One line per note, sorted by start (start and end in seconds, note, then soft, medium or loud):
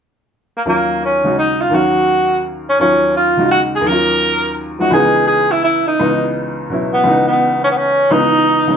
0.57 0.62 A#3 medium
0.65 1.68 D#2 soft
0.65 1.69 D#3 soft
0.65 1.71 F#3 soft
0.65 1.01 A#3 medium
0.65 1.72 C#4 soft
0.65 1.73 F4 soft
1.05 1.36 C#4 medium
1.24 1.72 C#3 soft
1.24 1.72 G#3 soft
1.24 1.73 D#4 soft
1.24 1.73 F#4 soft
1.39 1.63 D#4 medium
1.62 1.76 F4 medium
1.70 2.78 D#2 soft
1.70 2.78 D#3 soft
1.70 2.79 F#3 soft
1.70 2.79 C#4 soft
1.74 2.45 F#4 medium
1.74 2.80 F5 soft
2.70 2.80 C#4 medium
2.79 3.79 D#2 soft
2.79 3.82 D#3 soft
2.79 3.85 F#3 soft
2.79 3.86 C#4 soft
2.79 3.13 C#4 medium
2.79 3.87 F4 soft
3.17 3.49 F4 medium
3.37 3.85 C#3 soft
3.37 3.86 G#3 soft
3.37 3.86 D#4 soft
3.37 3.87 F#4 soft
3.51 3.61 F#4 medium
3.76 3.89 G#4 medium
3.81 4.90 D#2 soft
3.81 4.91 D#3 soft
3.86 4.92 F#3 soft
3.86 4.94 C#4 soft
3.86 4.57 A#4 medium
3.92 4.95 F4 medium
4.79 4.92 F3 soft
4.79 4.92 G#3 soft
4.79 4.93 D#4 soft
4.79 4.92 F#4 medium
4.79 4.93 F#4 soft
4.91 5.98 C#2 soft
4.91 5.98 C#3 soft
4.91 5.98 E3 soft
4.91 5.99 B3 soft
4.91 5.26 G#4 medium
4.96 5.99 D#4 medium
5.28 5.53 G#4 medium
5.52 5.64 E4 medium
5.64 5.85 E4 medium
5.88 6.31 D#4 medium
6.00 7.02 C#2 soft
6.00 7.03 C#3 soft
6.00 7.05 E3 soft
6.00 7.06 B3 soft
6.00 7.06 D#4 medium
6.70 7.05 B2 soft
6.70 7.05 F#3 soft
6.70 7.06 C#4 soft
6.70 7.06 E4 soft
6.94 7.26 B3 medium
7.04 8.09 C#2 soft
7.04 8.09 C#3 soft
7.04 8.10 E3 soft
7.04 8.10 B3 soft
7.09 8.11 D#4 medium
7.28 7.61 B3 medium
7.64 7.67 C#4 medium
7.71 7.79 B3 medium
7.78 8.13 C#4 medium
8.11 8.77 C#2 soft
8.11 8.66 C#3 soft
8.11 8.77 E3 soft
8.11 8.77 B3 soft
8.11 8.77 D#4 loud
8.11 8.77 D#4 medium
8.67 8.77 C#3 soft
8.67 8.77 D#3 soft
8.67 8.77 G#3 soft
8.67 8.77 C#4 soft